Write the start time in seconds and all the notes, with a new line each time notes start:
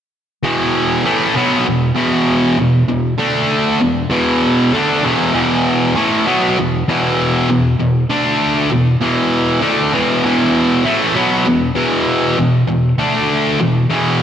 0.43 E2 B2 E3
1.04 A2 E3 A3
1.34 B2 F#3 B3
1.65 E2 B2
1.95 E2 B2 E3
2.58 E2 B2
2.89 E2 B2
3.18 D3 A3 D4
3.80 E2 B2
4.10 E2 B2 E3
4.73 D3 A3 D4
5.03 E2 B2 E3
5.34 E2 B2 E3
5.96 A2 E3 A3
6.27 B2 F#3 B3
6.58 E2 B2
6.88 E2 B2 E3
7.50 E2 B2
7.80 E2 B2
8.10 D3 A3 D4
8.71 E2 B2
9.01 E2 B2 E3
9.62 D3 A3 D4
9.93 E2 B2 E3
10.24 E2 B2 E3
10.84 A2 E3 A3
11.15 B2 F#3 B3
11.45 E2 B2
11.75 E2 B2 E3
12.38 E2 B2
12.67 E2 B2
12.98 D3 A3 D4
13.59 E2 B2
13.90 E2 B2 E3